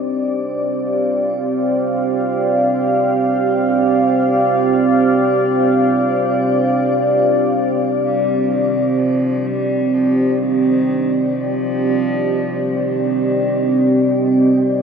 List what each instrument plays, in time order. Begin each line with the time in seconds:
Already playing: ambient pad C4 G4 D5 D#5
0.10 ambient pad F5
8.04 cello G3
8.18 ambient pad D#5
8.52 cello D#3
8.98 cello F3
9.47 cello G3
9.94 cello F3
10.40 cello D#3
11.33 cello F3
12.73 cello D#3